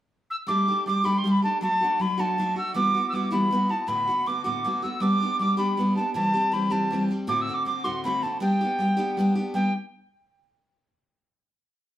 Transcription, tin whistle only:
0, 0, Header, 1, 2, 480
1, 0, Start_track
1, 0, Key_signature, 1, "major"
1, 0, Tempo, 378072
1, 609, Time_signature, 6, 3, 24, 8
1, 15203, End_track
2, 0, Start_track
2, 0, Title_t, "Tin whistle"
2, 0, Program_c, 0, 75
2, 387, Note_on_c, 0, 88, 84
2, 464, Note_off_c, 0, 88, 0
2, 607, Note_on_c, 0, 86, 97
2, 1065, Note_off_c, 0, 86, 0
2, 1102, Note_on_c, 0, 86, 89
2, 1333, Note_on_c, 0, 83, 83
2, 1352, Note_off_c, 0, 86, 0
2, 1501, Note_on_c, 0, 84, 82
2, 1520, Note_off_c, 0, 83, 0
2, 1669, Note_on_c, 0, 83, 91
2, 1688, Note_off_c, 0, 84, 0
2, 1816, Note_off_c, 0, 83, 0
2, 1824, Note_on_c, 0, 81, 69
2, 2037, Note_off_c, 0, 81, 0
2, 2055, Note_on_c, 0, 81, 87
2, 2486, Note_off_c, 0, 81, 0
2, 2486, Note_on_c, 0, 81, 57
2, 2554, Note_on_c, 0, 83, 88
2, 2573, Note_off_c, 0, 81, 0
2, 2792, Note_on_c, 0, 81, 78
2, 2811, Note_off_c, 0, 83, 0
2, 3266, Note_off_c, 0, 81, 0
2, 3274, Note_on_c, 0, 88, 69
2, 3482, Note_off_c, 0, 88, 0
2, 3496, Note_on_c, 0, 86, 94
2, 3896, Note_off_c, 0, 86, 0
2, 3927, Note_on_c, 0, 88, 61
2, 3987, Note_on_c, 0, 86, 83
2, 4006, Note_off_c, 0, 88, 0
2, 4208, Note_off_c, 0, 86, 0
2, 4215, Note_on_c, 0, 83, 87
2, 4704, Note_on_c, 0, 81, 78
2, 4723, Note_off_c, 0, 83, 0
2, 4928, Note_on_c, 0, 83, 93
2, 4947, Note_off_c, 0, 81, 0
2, 5423, Note_on_c, 0, 86, 81
2, 5442, Note_off_c, 0, 83, 0
2, 5645, Note_off_c, 0, 86, 0
2, 5652, Note_on_c, 0, 86, 72
2, 6132, Note_on_c, 0, 88, 65
2, 6151, Note_off_c, 0, 86, 0
2, 6281, Note_off_c, 0, 88, 0
2, 6281, Note_on_c, 0, 88, 72
2, 6366, Note_on_c, 0, 86, 95
2, 6385, Note_off_c, 0, 88, 0
2, 6851, Note_off_c, 0, 86, 0
2, 6858, Note_on_c, 0, 86, 85
2, 7071, Note_off_c, 0, 86, 0
2, 7084, Note_on_c, 0, 83, 69
2, 7540, Note_off_c, 0, 83, 0
2, 7567, Note_on_c, 0, 81, 65
2, 7784, Note_off_c, 0, 81, 0
2, 7804, Note_on_c, 0, 81, 91
2, 8293, Note_on_c, 0, 83, 77
2, 8312, Note_off_c, 0, 81, 0
2, 8527, Note_on_c, 0, 81, 75
2, 8546, Note_off_c, 0, 83, 0
2, 8925, Note_off_c, 0, 81, 0
2, 9251, Note_on_c, 0, 86, 86
2, 9414, Note_on_c, 0, 88, 74
2, 9433, Note_off_c, 0, 86, 0
2, 9573, Note_on_c, 0, 86, 90
2, 9592, Note_off_c, 0, 88, 0
2, 9718, Note_off_c, 0, 86, 0
2, 9726, Note_on_c, 0, 86, 82
2, 9957, Note_on_c, 0, 84, 72
2, 9977, Note_off_c, 0, 86, 0
2, 10205, Note_off_c, 0, 84, 0
2, 10213, Note_on_c, 0, 83, 71
2, 10446, Note_on_c, 0, 81, 66
2, 10465, Note_off_c, 0, 83, 0
2, 10670, Note_off_c, 0, 81, 0
2, 10678, Note_on_c, 0, 79, 82
2, 11838, Note_off_c, 0, 79, 0
2, 12116, Note_on_c, 0, 79, 74
2, 12360, Note_off_c, 0, 79, 0
2, 15203, End_track
0, 0, End_of_file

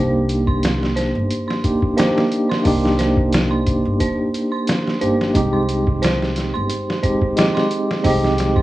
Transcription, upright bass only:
0, 0, Header, 1, 2, 480
1, 0, Start_track
1, 0, Key_signature, -3, "minor"
1, 0, Tempo, 674157
1, 1886, Time_signature, 4, 2, 24, 8
1, 6140, End_track
2, 0, Start_track
2, 0, Title_t, "Upright bass"
2, 0, Program_c, 0, 32
2, 0, Note_on_c, 0, 36, 96
2, 793, Note_off_c, 0, 36, 0
2, 819, Note_on_c, 0, 31, 88
2, 915, Note_off_c, 0, 31, 0
2, 1892, Note_on_c, 0, 36, 95
2, 2713, Note_off_c, 0, 36, 0
2, 2743, Note_on_c, 0, 31, 86
2, 2837, Note_off_c, 0, 31, 0
2, 3576, Note_on_c, 0, 31, 72
2, 3785, Note_off_c, 0, 31, 0
2, 3813, Note_on_c, 0, 36, 93
2, 4633, Note_off_c, 0, 36, 0
2, 4664, Note_on_c, 0, 31, 89
2, 4757, Note_off_c, 0, 31, 0
2, 5732, Note_on_c, 0, 36, 93
2, 6140, Note_off_c, 0, 36, 0
2, 6140, End_track
0, 0, End_of_file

